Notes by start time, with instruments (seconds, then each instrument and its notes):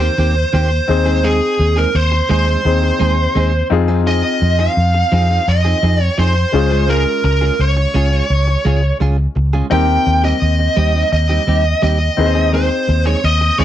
Already playing: grand piano C4 D#4 G4 A#4, lead electric guitar C5
0.00 clean electric guitar D#3 A#3 C4 G4
0.18 fingered electric bass D#2, clean electric guitar D#3 A#3 C4 G4
0.35 muted clean electric guitar stroke
0.53 fingered electric bass D#2, clean electric guitar D#3 A#3 C4 G4, lead electric guitar C5
0.71 muted clean electric guitar stroke
0.88 fingered electric bass D#2, grand piano C4 D#4 G#4 C5, muted clean electric guitar stroke
1.06 clean electric guitar G#3 C4 D#4 G#4
1.23 clean electric guitar G#3 C4 D#4 G#4, lead electric guitar G#4
1.59 fingered electric bass D#2, muted clean electric guitar stroke
1.76 clean electric guitar G#3 C4 D#4 G#4, lead electric guitar A#4
1.94 fingered electric bass D#2, lead electric guitar C5, muted clean electric guitar stroke
2.12 muted clean electric guitar stroke
2.29 fingered electric bass D#2, clean electric guitar G#3 C4 D#4 G#4, lead electric guitar C5
2.47 clean electric guitar G#3 C4 D#4 G#4
2.65 fingered electric bass D#2, grand piano C4 D#4 G#4 C5
2.82 muted clean electric guitar stroke
3.00 fingered electric bass D#2, clean electric guitar G#3 C4 D#4 G#4
3.35 fingered electric bass D#2, clean electric guitar G#3 C4 D#4 G#4
3.53 muted clean electric guitar stroke
3.70 fingered electric bass F2, grand piano C4 D#4 F4 G#4, muted clean electric guitar stroke
3.88 clean electric guitar F3 C4 D#4 G#4
4.06 clean electric guitar F3 C4 D#4 G#4, lead electric guitar D#5
4.41 fingered electric bass F2, muted clean electric guitar stroke
4.59 clean electric guitar F3 C4 D#4 G#4, lead electric guitar F5
4.77 fingered electric bass F2, muted clean electric guitar stroke
4.94 muted clean electric guitar stroke
5.12 fingered electric bass F2, clean electric guitar F3 C4 D#4 G#4
5.29 clean electric guitar F3 C4 D#4 G#4
5.47 fingered electric bass F2, lead electric guitar D#5, muted clean electric guitar stroke
5.65 clean electric guitar F3 C4 D#4 G#4
5.82 fingered electric bass F2, clean electric guitar F3 C4 D#4 G#4
6.00 lead electric guitar C#5, muted clean electric guitar stroke
6.18 fingered electric bass F2, clean electric guitar F3 C4 D#4 G#4, lead electric guitar C5
6.36 muted clean electric guitar stroke
6.53 fingered electric bass C#2, grand piano G#3 C#4 F4 G#4, muted clean electric guitar stroke
6.71 clean electric guitar G#3 C#4 F4 G#4
6.88 clean electric guitar G#3 C#4 F4 G#4, lead electric guitar A#4
7.06 muted clean electric guitar stroke
7.24 fingered electric bass C#2, lead electric guitar A#4, muted clean electric guitar stroke
7.41 clean electric guitar G#3 C#4 F4 G#4
7.59 fingered electric bass C#2, lead electric guitar C#5, muted clean electric guitar stroke
7.77 muted clean electric guitar stroke
7.94 fingered electric bass C#2, clean electric guitar G#3 C#4 F4 G#4
8.12 clean electric guitar G#3 C#4 F4 G#4
8.30 fingered electric bass C#2, muted clean electric guitar stroke
8.47 muted clean electric guitar stroke
8.65 fingered electric bass C#2, clean electric guitar G#3 C#4 F4 G#4
9.00 fingered electric bass C#2, clean electric guitar G#3 C#4 F4 G#4
9.18 muted clean electric guitar stroke
9.36 fingered electric bass C#2, muted clean electric guitar stroke
9.53 clean electric guitar G#3 C#4 F4 G#4
9.70 fingered electric bass D#2, clean electric guitar G3 C4 D#4 G4, grand piano C4 D#4 G4 A#4, lead electric guitar G5
10.06 fingered electric bass D#2, muted clean electric guitar stroke
10.24 clean electric guitar G3 C4 D#4 G4, lead electric guitar D#5
10.42 fingered electric bass D#2, muted clean electric guitar stroke
10.59 muted clean electric guitar stroke
10.77 fingered electric bass D#2, clean electric guitar G3 C4 D#4 G4
10.94 clean electric guitar G3 C4 D#4 G4
11.12 fingered electric bass D#2, lead electric guitar D#5, muted clean electric guitar stroke
11.29 clean electric guitar G3 C4 D#4 G4
11.47 fingered electric bass D#2, clean electric guitar G3 C4 D#4 G4
11.65 muted clean electric guitar stroke
11.82 fingered electric bass D#2, clean electric guitar G3 C4 D#4 G4, lead electric guitar D#5
12.17 fingered electric bass D#2, grand piano C4 D#4 G#4 B4, muted clean electric guitar stroke
12.26 grand piano C5
12.35 clean electric guitar G#3 C4 D#4 G#4
12.53 clean electric guitar G#3 C4 D#4 G#4, lead electric guitar C5
12.88 fingered electric bass D#2, muted clean electric guitar stroke
13.06 clean electric guitar G#3 C4 D#4 G#4, lead electric guitar C#5
13.23 fingered electric bass D#2, lead electric guitar D#5, muted clean electric guitar stroke
13.41 muted clean electric guitar stroke
13.58 fingered electric bass D#2, clean electric guitar G#3 C4 D#4 G#4, lead electric guitar D#5